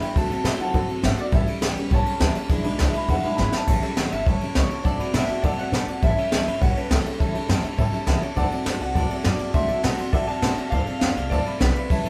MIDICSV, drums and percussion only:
0, 0, Header, 1, 2, 480
1, 0, Start_track
1, 0, Tempo, 293399
1, 254, Time_signature, 4, 2, 24, 8
1, 19782, End_track
2, 0, Start_track
2, 0, Title_t, "Drums"
2, 30, Note_on_c, 9, 51, 70
2, 193, Note_off_c, 9, 51, 0
2, 260, Note_on_c, 9, 36, 116
2, 268, Note_on_c, 9, 51, 82
2, 424, Note_off_c, 9, 36, 0
2, 431, Note_off_c, 9, 51, 0
2, 510, Note_on_c, 9, 51, 71
2, 673, Note_off_c, 9, 51, 0
2, 737, Note_on_c, 9, 38, 127
2, 737, Note_on_c, 9, 51, 92
2, 900, Note_off_c, 9, 38, 0
2, 900, Note_off_c, 9, 51, 0
2, 979, Note_on_c, 9, 51, 62
2, 1142, Note_off_c, 9, 51, 0
2, 1207, Note_on_c, 9, 51, 85
2, 1215, Note_on_c, 9, 36, 108
2, 1370, Note_off_c, 9, 51, 0
2, 1379, Note_off_c, 9, 36, 0
2, 1451, Note_on_c, 9, 51, 61
2, 1615, Note_off_c, 9, 51, 0
2, 1693, Note_on_c, 9, 38, 116
2, 1693, Note_on_c, 9, 51, 74
2, 1856, Note_off_c, 9, 38, 0
2, 1856, Note_off_c, 9, 51, 0
2, 1924, Note_on_c, 9, 51, 62
2, 2088, Note_off_c, 9, 51, 0
2, 2158, Note_on_c, 9, 51, 82
2, 2167, Note_on_c, 9, 36, 126
2, 2322, Note_off_c, 9, 51, 0
2, 2331, Note_off_c, 9, 36, 0
2, 2408, Note_on_c, 9, 51, 72
2, 2572, Note_off_c, 9, 51, 0
2, 2648, Note_on_c, 9, 38, 121
2, 2648, Note_on_c, 9, 51, 101
2, 2812, Note_off_c, 9, 38, 0
2, 2812, Note_off_c, 9, 51, 0
2, 2894, Note_on_c, 9, 51, 63
2, 3058, Note_off_c, 9, 51, 0
2, 3124, Note_on_c, 9, 51, 96
2, 3128, Note_on_c, 9, 36, 110
2, 3287, Note_off_c, 9, 51, 0
2, 3291, Note_off_c, 9, 36, 0
2, 3371, Note_on_c, 9, 51, 69
2, 3535, Note_off_c, 9, 51, 0
2, 3606, Note_on_c, 9, 38, 115
2, 3606, Note_on_c, 9, 51, 81
2, 3770, Note_off_c, 9, 38, 0
2, 3770, Note_off_c, 9, 51, 0
2, 3842, Note_on_c, 9, 51, 70
2, 4005, Note_off_c, 9, 51, 0
2, 4078, Note_on_c, 9, 51, 92
2, 4084, Note_on_c, 9, 36, 119
2, 4242, Note_off_c, 9, 51, 0
2, 4248, Note_off_c, 9, 36, 0
2, 4322, Note_on_c, 9, 51, 79
2, 4485, Note_off_c, 9, 51, 0
2, 4561, Note_on_c, 9, 38, 127
2, 4561, Note_on_c, 9, 51, 93
2, 4725, Note_off_c, 9, 38, 0
2, 4725, Note_off_c, 9, 51, 0
2, 4802, Note_on_c, 9, 51, 69
2, 4966, Note_off_c, 9, 51, 0
2, 5049, Note_on_c, 9, 36, 115
2, 5049, Note_on_c, 9, 51, 83
2, 5213, Note_off_c, 9, 36, 0
2, 5213, Note_off_c, 9, 51, 0
2, 5284, Note_on_c, 9, 51, 58
2, 5447, Note_off_c, 9, 51, 0
2, 5529, Note_on_c, 9, 38, 59
2, 5692, Note_off_c, 9, 38, 0
2, 5766, Note_on_c, 9, 38, 99
2, 5930, Note_off_c, 9, 38, 0
2, 6010, Note_on_c, 9, 49, 108
2, 6015, Note_on_c, 9, 36, 107
2, 6173, Note_off_c, 9, 49, 0
2, 6178, Note_off_c, 9, 36, 0
2, 6253, Note_on_c, 9, 51, 69
2, 6417, Note_off_c, 9, 51, 0
2, 6494, Note_on_c, 9, 38, 123
2, 6494, Note_on_c, 9, 51, 87
2, 6657, Note_off_c, 9, 38, 0
2, 6657, Note_off_c, 9, 51, 0
2, 6740, Note_on_c, 9, 51, 69
2, 6904, Note_off_c, 9, 51, 0
2, 6977, Note_on_c, 9, 36, 125
2, 6981, Note_on_c, 9, 51, 85
2, 7141, Note_off_c, 9, 36, 0
2, 7145, Note_off_c, 9, 51, 0
2, 7212, Note_on_c, 9, 51, 67
2, 7376, Note_off_c, 9, 51, 0
2, 7447, Note_on_c, 9, 38, 108
2, 7447, Note_on_c, 9, 51, 82
2, 7611, Note_off_c, 9, 38, 0
2, 7611, Note_off_c, 9, 51, 0
2, 7692, Note_on_c, 9, 51, 63
2, 7856, Note_off_c, 9, 51, 0
2, 7933, Note_on_c, 9, 51, 79
2, 7934, Note_on_c, 9, 36, 114
2, 8097, Note_off_c, 9, 51, 0
2, 8098, Note_off_c, 9, 36, 0
2, 8176, Note_on_c, 9, 51, 69
2, 8339, Note_off_c, 9, 51, 0
2, 8406, Note_on_c, 9, 38, 117
2, 8406, Note_on_c, 9, 51, 94
2, 8570, Note_off_c, 9, 38, 0
2, 8570, Note_off_c, 9, 51, 0
2, 8653, Note_on_c, 9, 51, 56
2, 8817, Note_off_c, 9, 51, 0
2, 8891, Note_on_c, 9, 51, 90
2, 8896, Note_on_c, 9, 36, 124
2, 9054, Note_off_c, 9, 51, 0
2, 9059, Note_off_c, 9, 36, 0
2, 9140, Note_on_c, 9, 51, 64
2, 9303, Note_off_c, 9, 51, 0
2, 9381, Note_on_c, 9, 38, 99
2, 9381, Note_on_c, 9, 51, 67
2, 9545, Note_off_c, 9, 38, 0
2, 9545, Note_off_c, 9, 51, 0
2, 9618, Note_on_c, 9, 51, 61
2, 9782, Note_off_c, 9, 51, 0
2, 9859, Note_on_c, 9, 51, 78
2, 9860, Note_on_c, 9, 36, 118
2, 10022, Note_off_c, 9, 51, 0
2, 10023, Note_off_c, 9, 36, 0
2, 10112, Note_on_c, 9, 51, 65
2, 10276, Note_off_c, 9, 51, 0
2, 10340, Note_on_c, 9, 38, 127
2, 10340, Note_on_c, 9, 51, 86
2, 10504, Note_off_c, 9, 38, 0
2, 10504, Note_off_c, 9, 51, 0
2, 10591, Note_on_c, 9, 51, 70
2, 10755, Note_off_c, 9, 51, 0
2, 10824, Note_on_c, 9, 36, 114
2, 10827, Note_on_c, 9, 51, 88
2, 10988, Note_off_c, 9, 36, 0
2, 10991, Note_off_c, 9, 51, 0
2, 11072, Note_on_c, 9, 51, 59
2, 11236, Note_off_c, 9, 51, 0
2, 11301, Note_on_c, 9, 38, 107
2, 11301, Note_on_c, 9, 51, 81
2, 11465, Note_off_c, 9, 38, 0
2, 11465, Note_off_c, 9, 51, 0
2, 11550, Note_on_c, 9, 51, 71
2, 11714, Note_off_c, 9, 51, 0
2, 11785, Note_on_c, 9, 36, 108
2, 11788, Note_on_c, 9, 51, 80
2, 11949, Note_off_c, 9, 36, 0
2, 11952, Note_off_c, 9, 51, 0
2, 12023, Note_on_c, 9, 51, 72
2, 12187, Note_off_c, 9, 51, 0
2, 12260, Note_on_c, 9, 38, 124
2, 12260, Note_on_c, 9, 51, 94
2, 12423, Note_off_c, 9, 38, 0
2, 12423, Note_off_c, 9, 51, 0
2, 12494, Note_on_c, 9, 51, 69
2, 12658, Note_off_c, 9, 51, 0
2, 12735, Note_on_c, 9, 51, 88
2, 12737, Note_on_c, 9, 36, 115
2, 12899, Note_off_c, 9, 51, 0
2, 12901, Note_off_c, 9, 36, 0
2, 12978, Note_on_c, 9, 51, 58
2, 13142, Note_off_c, 9, 51, 0
2, 13203, Note_on_c, 9, 38, 101
2, 13203, Note_on_c, 9, 51, 66
2, 13366, Note_off_c, 9, 38, 0
2, 13366, Note_off_c, 9, 51, 0
2, 13449, Note_on_c, 9, 51, 58
2, 13612, Note_off_c, 9, 51, 0
2, 13690, Note_on_c, 9, 51, 87
2, 13693, Note_on_c, 9, 36, 112
2, 13853, Note_off_c, 9, 51, 0
2, 13856, Note_off_c, 9, 36, 0
2, 13935, Note_on_c, 9, 51, 74
2, 14098, Note_off_c, 9, 51, 0
2, 14169, Note_on_c, 9, 38, 116
2, 14169, Note_on_c, 9, 51, 88
2, 14333, Note_off_c, 9, 38, 0
2, 14333, Note_off_c, 9, 51, 0
2, 14419, Note_on_c, 9, 51, 61
2, 14582, Note_off_c, 9, 51, 0
2, 14651, Note_on_c, 9, 36, 119
2, 14654, Note_on_c, 9, 51, 97
2, 14814, Note_off_c, 9, 36, 0
2, 14817, Note_off_c, 9, 51, 0
2, 14891, Note_on_c, 9, 51, 63
2, 15055, Note_off_c, 9, 51, 0
2, 15123, Note_on_c, 9, 38, 109
2, 15123, Note_on_c, 9, 51, 84
2, 15287, Note_off_c, 9, 38, 0
2, 15287, Note_off_c, 9, 51, 0
2, 15358, Note_on_c, 9, 51, 75
2, 15522, Note_off_c, 9, 51, 0
2, 15607, Note_on_c, 9, 51, 87
2, 15610, Note_on_c, 9, 36, 122
2, 15771, Note_off_c, 9, 51, 0
2, 15774, Note_off_c, 9, 36, 0
2, 15845, Note_on_c, 9, 51, 67
2, 16009, Note_off_c, 9, 51, 0
2, 16094, Note_on_c, 9, 38, 127
2, 16094, Note_on_c, 9, 51, 92
2, 16258, Note_off_c, 9, 38, 0
2, 16258, Note_off_c, 9, 51, 0
2, 16333, Note_on_c, 9, 51, 72
2, 16497, Note_off_c, 9, 51, 0
2, 16573, Note_on_c, 9, 36, 107
2, 16573, Note_on_c, 9, 51, 82
2, 16737, Note_off_c, 9, 36, 0
2, 16737, Note_off_c, 9, 51, 0
2, 16815, Note_on_c, 9, 51, 59
2, 16979, Note_off_c, 9, 51, 0
2, 17053, Note_on_c, 9, 38, 98
2, 17053, Note_on_c, 9, 51, 83
2, 17217, Note_off_c, 9, 38, 0
2, 17217, Note_off_c, 9, 51, 0
2, 17303, Note_on_c, 9, 51, 65
2, 17466, Note_off_c, 9, 51, 0
2, 17535, Note_on_c, 9, 51, 80
2, 17540, Note_on_c, 9, 36, 113
2, 17699, Note_off_c, 9, 51, 0
2, 17704, Note_off_c, 9, 36, 0
2, 17778, Note_on_c, 9, 51, 63
2, 17941, Note_off_c, 9, 51, 0
2, 18017, Note_on_c, 9, 38, 127
2, 18017, Note_on_c, 9, 51, 86
2, 18181, Note_off_c, 9, 38, 0
2, 18181, Note_off_c, 9, 51, 0
2, 18271, Note_on_c, 9, 51, 62
2, 18434, Note_off_c, 9, 51, 0
2, 18508, Note_on_c, 9, 36, 112
2, 18511, Note_on_c, 9, 51, 82
2, 18672, Note_off_c, 9, 36, 0
2, 18675, Note_off_c, 9, 51, 0
2, 18746, Note_on_c, 9, 51, 58
2, 18909, Note_off_c, 9, 51, 0
2, 18988, Note_on_c, 9, 38, 107
2, 18988, Note_on_c, 9, 51, 77
2, 19152, Note_off_c, 9, 38, 0
2, 19152, Note_off_c, 9, 51, 0
2, 19234, Note_on_c, 9, 51, 69
2, 19397, Note_off_c, 9, 51, 0
2, 19472, Note_on_c, 9, 36, 117
2, 19477, Note_on_c, 9, 51, 100
2, 19635, Note_off_c, 9, 36, 0
2, 19640, Note_off_c, 9, 51, 0
2, 19713, Note_on_c, 9, 51, 77
2, 19782, Note_off_c, 9, 51, 0
2, 19782, End_track
0, 0, End_of_file